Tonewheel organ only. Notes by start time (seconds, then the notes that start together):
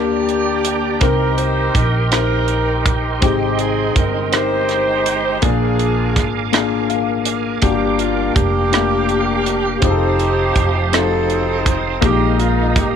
Already playing: G4 D5 G5 A#5
1.00 A#4 D#5 G5 C6
3.21 G#3
5.42 A#4 F5 G#5 D6
7.61 F5 G5
9.82 C5 A5 D#6
12.01 A#4 D#5 F5 D#6